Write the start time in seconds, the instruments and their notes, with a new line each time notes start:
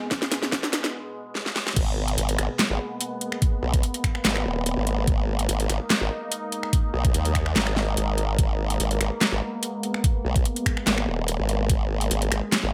Already playing: ambient pad B2 G#3 B3
0.11 kick, snare
0.22 snare
0.32 snare, closed hi-hat
0.42 snare
0.52 kick, snare
0.63 snare
0.73 snare, closed hi-hat
0.84 snare
1.35 snare
1.46 snare
1.56 snare
1.67 snare
1.76 wobble bass G#1, ambient pad G#3 A#3 B3, kick, closed hi-hat, crash
2.08 closed hi-hat
2.18 wobble bass G#1, closed hi-hat
2.29 closed hi-hat
2.39 wobble bass G#1, finger snap, closed hi-hat
2.59 snare, clap, closed hi-hat
2.70 wobble bass G#1
3.01 closed hi-hat
3.21 closed hi-hat
3.32 finger snap
3.42 kick, closed hi-hat
3.63 wobble bass B1
3.74 kick, closed hi-hat
3.83 closed hi-hat
3.94 closed hi-hat
4.04 finger snap, kick, closed hi-hat
4.15 finger snap
4.25 wobble bass G#1, snare, clap, closed hi-hat
4.36 finger snap
4.45 wobble bass D#1
4.66 closed hi-hat
4.77 wobble bass G#1
4.87 closed hi-hat
5.07 wobble bass G#1, ambient pad D#4, kick, closed hi-hat
5.39 closed hi-hat
5.49 wobble bass G#1, closed hi-hat
5.60 closed hi-hat
5.70 wobble bass G#1, finger snap, closed hi-hat
5.90 snare, clap, closed hi-hat
6.01 wobble bass G#1
6.32 closed hi-hat
6.52 closed hi-hat
6.63 finger snap
6.73 kick, closed hi-hat
6.94 wobble bass B1
7.05 kick, closed hi-hat
7.14 wobble bass D#2, closed hi-hat
7.25 closed hi-hat
7.35 finger snap, kick, closed hi-hat
7.46 finger snap
7.56 wobble bass G#1, snare, clap, closed hi-hat
7.67 finger snap
7.76 snare
7.97 wobble bass G#1, closed hi-hat
8.18 closed hi-hat
8.38 wobble bass G#1, ambient pad B3, kick, closed hi-hat
8.70 closed hi-hat
8.80 wobble bass G#1, closed hi-hat
8.91 closed hi-hat
9.01 wobble bass G#1, finger snap, closed hi-hat
9.21 snare, clap, closed hi-hat
9.32 wobble bass G#1
9.63 closed hi-hat
9.83 closed hi-hat
9.94 finger snap
10.04 kick, closed hi-hat
10.25 wobble bass B1
10.36 kick, closed hi-hat
10.45 closed hi-hat
10.56 closed hi-hat
10.66 finger snap, kick, closed hi-hat
10.77 finger snap
10.87 wobble bass G#1, snare, clap, closed hi-hat
10.98 finger snap
11.07 wobble bass D#1
11.28 closed hi-hat
11.39 wobble bass G#1
11.49 closed hi-hat
11.70 wobble bass G#1, ambient pad C#4, kick, closed hi-hat
12.01 closed hi-hat
12.11 wobble bass G#1, closed hi-hat
12.22 closed hi-hat
12.32 wobble bass G#1, finger snap, closed hi-hat
12.52 snare, clap, closed hi-hat
12.63 wobble bass G#1